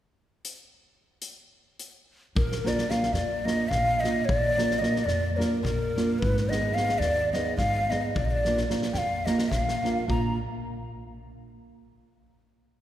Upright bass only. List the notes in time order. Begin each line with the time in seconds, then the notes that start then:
2.35 A#1
3.13 F2
3.71 A#1
4.28 A#1
5.05 F2
5.63 A#1
6.22 G#1
6.99 D#2
7.57 G#1
8.15 A#1
8.93 F2
9.51 A#1
10.08 A#1